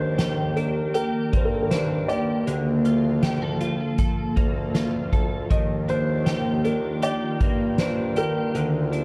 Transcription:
0.00 1.10 D#2 medium
0.00 2.44 D#3 medium
0.00 2.47 D#3 medium
0.00 1.32 A#3 medium
0.00 5.47 A#3 medium
0.00 0.56 D4 medium
0.00 2.44 G4 medium
0.00 2.44 A#4 medium
0.00 0.59 C5 loud
0.18 0.93 G4 medium
0.18 snare loud
0.18 closed hi-hat medium
0.56 1.71 D4 soft
0.56 0.94 A#4 medium
0.56 closed hi-hat soft
0.94 2.08 G4 medium
0.94 1.32 A#4 medium
0.94 closed hi-hat medium
1.33 2.43 G2 medium
1.33 3.45 A#3 soft
1.33 1.44 C5 medium
1.33 kick medium
1.33 closed hi-hat soft
1.45 1.53 A#4 medium
1.54 1.63 A4 medium
1.63 1.71 A#4 medium
1.71 2.85 D4 medium
1.71 2.06 C5 medium
1.71 snare loud
1.71 closed hi-hat medium
2.08 2.55 G4 medium
2.08 3.57 D5 medium
2.08 closed hi-hat soft
2.47 4.06 D2 loud
2.47 5.50 D3 medium
2.47 5.48 F3 medium
2.47 9.04 F4 medium
2.47 5.48 A4 medium
2.47 closed hi-hat medium
2.85 3.59 F4 soft
2.85 closed hi-hat soft
3.23 3.42 G4 medium
3.23 snare loud
3.23 closed hi-hat medium
3.42 3.98 A4 soft
3.61 4.73 F4 medium
3.61 closed hi-hat medium
3.98 5.11 A4 medium
3.98 kick medium
3.98 closed hi-hat medium
4.36 5.09 D2 medium
4.36 7.40 A#3 medium
4.36 kick medium
4.36 closed hi-hat soft
4.75 5.58 F4 medium
4.75 snare loud
4.75 closed hi-hat medium
5.13 5.49 D2 medium
5.13 5.58 A4 medium
5.13 kick medium
5.13 closed hi-hat soft
5.50 7.18 D#2 loud
5.50 8.54 D#3 medium
5.50 8.52 D#3 medium
5.50 8.52 A#3 medium
5.50 8.52 G4 medium
5.50 5.90 D#5 medium
5.50 kick medium
5.50 closed hi-hat medium
5.88 6.64 D4 medium
5.88 6.61 C5 loud
5.88 closed hi-hat soft
6.26 7.01 G4 medium
6.26 snare loud
6.26 closed hi-hat medium
6.64 7.78 D4 medium
6.64 7.00 A#4 medium
6.64 closed hi-hat soft
7.02 8.16 G4 medium
7.02 7.75 D5 medium
7.02 closed hi-hat medium
7.41 8.50 G2 medium
7.41 9.04 A#3 medium
7.41 kick medium
7.41 closed hi-hat soft
7.78 8.92 D4 medium
7.78 8.14 C5 medium
7.78 snare loud
7.78 closed hi-hat medium
8.16 8.62 G4 medium
8.16 9.04 A#4 medium
8.16 closed hi-hat soft
8.53 9.04 D2 loud
8.53 9.04 D3 medium
8.53 9.04 F3 medium
8.53 9.04 A#3 medium
8.53 9.04 A5 medium
8.53 closed hi-hat medium
8.92 9.04 D4 soft
8.92 closed hi-hat soft

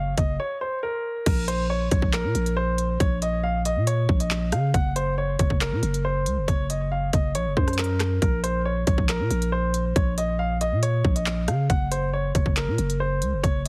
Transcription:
0.00 0.15 F#1 loud
0.00 0.13 F5 medium
0.18 0.39 F#1 loud
0.18 0.34 D#5 medium
0.18 kick loud
0.18 closed hi-hat medium
0.40 0.56 C#5 medium
0.61 0.78 C5 medium
0.83 1.24 A#4 medium
1.26 1.89 A#1 loud
1.26 1.43 A#4 medium
1.26 kick loud
1.26 closed hi-hat medium
1.26 crash loud
1.48 1.65 C5 medium
1.48 closed hi-hat medium
1.70 1.86 C#5 medium
1.91 2.02 A#1 loud
1.91 2.08 C#5 medium
1.91 kick loud
1.91 closed hi-hat medium
2.02 2.26 A#1 loud
2.02 kick loud
2.13 2.54 A#4 loud
2.13 clap loud
2.13 closed hi-hat loud
2.24 2.34 A#2 loud
2.35 2.98 A#1 loud
2.35 closed hi-hat medium
2.46 closed hi-hat medium
2.57 2.98 C5 medium
2.78 closed hi-hat medium
3.00 3.78 A#1 loud
3.00 3.17 C#5 loud
3.00 kick loud
3.00 closed hi-hat medium
3.22 3.39 D#5 medium
3.22 closed hi-hat medium
3.43 3.60 F5 medium
3.65 3.82 D#5 medium
3.65 closed hi-hat medium
3.76 4.07 A#2 loud
3.87 4.18 C#5 loud
3.87 closed hi-hat medium
4.09 4.54 A#1 loud
4.09 kick medium
4.20 4.51 D#5 medium
4.20 closed hi-hat medium
4.31 clap loud
4.31 closed hi-hat medium
4.52 4.73 C#3 loud
4.52 4.69 F5 medium
4.52 cross-stick medium
4.52 closed hi-hat medium
4.74 5.37 F#1 loud
4.74 4.91 F#5 loud
4.74 kick loud
4.74 closed hi-hat medium
4.96 5.13 C5 medium
4.96 closed hi-hat medium
5.18 5.34 C#5 medium
5.39 5.50 F#1 loud
5.39 5.56 C#5 medium
5.39 kick loud
5.39 closed hi-hat medium
5.50 5.74 F#1 loud
5.50 kick medium
5.61 6.02 A#4 medium
5.61 clap loud
5.61 closed hi-hat medium
5.72 5.82 A#2 loud
5.83 6.28 F#1 loud
5.83 closed hi-hat medium
5.94 closed hi-hat medium
6.05 6.45 C5 medium
6.26 6.39 C#2 loud
6.26 closed hi-hat medium
6.37 6.48 F#1 loud
6.48 7.11 F#1 loud
6.48 6.65 C#5 loud
6.48 kick loud
6.48 closed hi-hat medium
6.70 6.86 D#5 medium
6.70 closed hi-hat medium
6.92 7.08 F5 medium
7.13 7.37 F#1 loud
7.13 7.30 D#5 medium
7.13 kick loud
7.13 closed hi-hat medium
7.35 7.47 A#1 loud
7.35 7.52 C#5 medium
7.35 closed hi-hat medium
7.46 7.56 F#1 loud
7.57 8.19 F#2 loud
7.57 7.73 C5 medium
7.57 kick medium
7.68 cross-stick medium
7.68 closed hi-hat soft
7.73 closed hi-hat medium
7.79 8.19 A#4 medium
7.79 clap loud
7.79 closed hi-hat medium
7.84 closed hi-hat medium
8.00 cross-stick medium
8.00 clap medium
8.00 closed hi-hat medium
8.22 8.85 A#1 loud
8.22 8.39 A#4 medium
8.22 kick loud
8.22 closed hi-hat medium
8.44 8.60 C5 medium
8.44 closed hi-hat medium
8.65 8.82 C#5 medium
8.87 8.97 A#1 loud
8.87 9.04 C#5 medium
8.87 kick loud
8.87 closed hi-hat medium
8.98 9.21 A#1 loud
8.98 kick medium
9.09 9.50 A#4 loud
9.09 clap loud
9.09 closed hi-hat medium
9.20 9.30 A#2 loud
9.31 9.93 A#1 loud
9.31 closed hi-hat medium
9.42 closed hi-hat medium
9.52 9.93 C5 medium
9.74 closed hi-hat medium
9.96 10.74 A#1 loud
9.96 10.13 C#5 loud
9.96 kick loud
9.96 closed hi-hat medium
10.18 10.34 D#5 medium
10.18 closed hi-hat medium
10.39 10.56 F5 medium
10.61 10.78 D#5 medium
10.61 closed hi-hat medium
10.72 11.03 A#2 loud
10.83 11.13 C#5 medium
10.83 closed hi-hat loud
11.05 11.50 A#1 loud
11.05 kick medium
11.16 11.46 D#5 medium
11.16 closed hi-hat medium
11.26 clap loud
11.26 closed hi-hat medium
11.48 11.69 C#3 loud
11.48 11.65 F5 medium
11.48 cross-stick medium
11.48 closed hi-hat medium
11.70 12.32 F#1 loud
11.70 11.86 F#5 loud
11.70 kick loud
11.70 closed hi-hat medium
11.91 12.08 C5 medium
11.91 closed hi-hat medium
12.13 12.30 C#5 medium
12.35 12.45 F#1 loud
12.35 12.52 C#5 medium
12.35 kick loud
12.35 closed hi-hat medium
12.46 12.69 F#1 loud
12.46 kick medium
12.57 12.98 A#4 medium
12.57 clap loud
12.57 closed hi-hat medium
12.68 12.78 A#2 loud
12.78 13.24 F#1 loud
12.78 closed hi-hat medium
12.90 closed hi-hat medium
13.00 13.41 C5 medium
13.22 13.34 C#2 loud
13.22 closed hi-hat medium
13.33 13.43 F#1 loud
13.43 13.68 F#1 loud
13.43 13.60 C#5 loud
13.43 kick loud
13.43 closed hi-hat medium

